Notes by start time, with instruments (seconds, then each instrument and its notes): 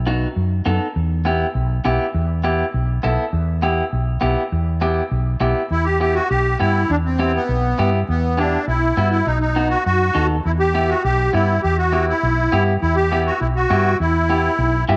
Already playing: fretless electric bass B1
0.07 clean electric guitar B3 D#4 F#4
0.36 fretless electric bass F#2
0.66 fretless electric bass F#2, clean electric guitar B3 D#4 A4
0.96 fretless electric bass E2
1.25 clean electric guitar B3 E4 G4
1.55 fretless electric bass B1
1.85 fretless electric bass B1, clean electric guitar B3 E4 G4
2.14 fretless electric bass E2
2.44 clean electric guitar B3 E4 G4
2.74 fretless electric bass B1
3.03 fretless electric bass B1, clean electric guitar B3 E4 A4
3.33 fretless electric bass E2
3.62 clean electric guitar B3 E4 G4
3.93 fretless electric bass B1
4.21 fretless electric bass B1, clean electric guitar B3 E4 G4
4.52 fretless electric bass E2
4.81 clean electric guitar B3 E4 G4
5.11 fretless electric bass B1
5.41 fretless electric bass B1, clean electric guitar B3 E4 G4
5.71 fretless electric bass E2, accordion E4
5.85 accordion G4
6.00 clean electric guitar B3 E4 G4, accordion G4
6.15 accordion F#4
6.30 fretless electric bass B1, accordion G4
6.60 fretless electric bass G2, clean electric guitar B3 E4 G4, accordion E4
6.90 fretless electric bass E2, accordion D4
7.05 accordion C4
7.19 clean electric guitar B3 E4 G4
7.35 accordion B3
7.49 fretless electric bass B1
7.78 fretless electric bass G2, clean electric guitar B3 E4 G4
8.09 fretless electric bass E2, accordion B3
8.38 clean electric guitar B3 E4 G4, accordion D4
8.67 fretless electric bass B1, accordion E4
8.97 fretless electric bass G2, clean electric guitar B3 E4 F#4
9.11 accordion E4
9.26 fretless electric bass B1, accordion D#4
9.40 accordion D#4
9.56 clean electric guitar B3 D#4 F#4
9.70 accordion F#4
9.85 fretless electric bass F#2, accordion F#4
10.15 fretless electric bass D#2, clean electric guitar B3 D#4 A4
10.45 fretless electric bass E2, accordion E4
10.59 accordion G4
10.74 clean electric guitar B3 E4 G4
10.89 accordion F#4
11.04 fretless electric bass B1, accordion G4
11.33 fretless electric bass G2, clean electric guitar B3 E4 G4, accordion E4
11.63 fretless electric bass E2, accordion G4
11.78 accordion F#4
11.92 clean electric guitar B3 E4 G4
12.09 accordion E4
12.23 fretless electric bass B1
12.52 fretless electric bass G2, clean electric guitar B3 E4 G4
12.81 fretless electric bass E2, accordion E4
12.96 accordion G4
13.12 clean electric guitar B3 E4 G4
13.27 accordion F#4
13.41 fretless electric bass B1, accordion E4
13.56 accordion F#4
13.70 fretless electric bass G2, clean electric guitar B3 E4 G4
14.00 fretless electric bass E2, accordion E4
14.29 clean electric guitar B3 E4 G4
14.59 fretless electric bass B1
14.89 fretless electric bass G2, clean electric guitar B3 E4 G4 E5